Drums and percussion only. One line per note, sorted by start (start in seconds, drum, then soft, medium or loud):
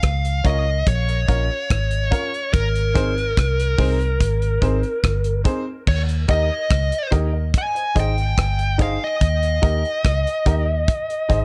0.03 kick loud
0.03 cross-stick loud
0.03 closed hi-hat medium
0.25 closed hi-hat medium
0.45 kick medium
0.45 closed hi-hat medium
0.87 kick medium
0.87 closed hi-hat loud
1.09 closed hi-hat soft
1.28 kick medium
1.28 closed hi-hat medium
1.70 kick loud
1.70 cross-stick loud
1.70 closed hi-hat medium
1.91 closed hi-hat medium
2.12 kick medium
2.12 closed hi-hat medium
2.34 closed hi-hat soft
2.54 kick loud
2.54 closed hi-hat medium
2.75 closed hi-hat medium
2.96 kick loud
2.96 cross-stick medium
2.96 closed hi-hat medium
3.18 closed hi-hat soft
3.37 kick loud
3.37 cross-stick loud
3.37 closed hi-hat medium
3.60 closed hi-hat medium
3.79 kick medium
3.79 open hi-hat medium
4.01 closed hi-hat soft
4.21 kick medium
4.21 closed hi-hat loud
4.42 closed hi-hat soft
4.62 kick medium
4.62 closed hi-hat medium
4.83 closed hi-hat soft
5.04 kick medium
5.04 cross-stick loud
5.04 closed hi-hat medium
5.24 closed hi-hat medium
5.45 kick loud
5.45 closed hi-hat medium
5.87 kick loud
5.87 crash medium
6.09 closed hi-hat medium
6.28 kick medium
6.28 closed hi-hat medium
6.71 kick loud
6.71 cross-stick loud
6.71 closed hi-hat medium
6.92 closed hi-hat medium
7.12 kick medium
7.12 closed hi-hat medium
7.54 kick medium
7.54 closed hi-hat loud
7.76 closed hi-hat medium
7.96 kick medium
7.96 closed hi-hat medium
8.18 closed hi-hat soft
8.38 kick medium
8.38 cross-stick loud
8.38 closed hi-hat medium
8.59 closed hi-hat medium
8.79 kick medium
8.79 closed hi-hat medium
9.21 kick loud
9.21 closed hi-hat medium
9.43 closed hi-hat medium
9.63 kick loud
9.63 closed hi-hat medium
9.85 closed hi-hat soft
10.05 kick loud
10.05 cross-stick loud
10.05 closed hi-hat loud
10.27 closed hi-hat medium
10.46 kick medium
10.46 closed hi-hat medium
10.88 kick loud
10.88 closed hi-hat loud
11.10 closed hi-hat soft
11.30 kick medium
11.30 closed hi-hat medium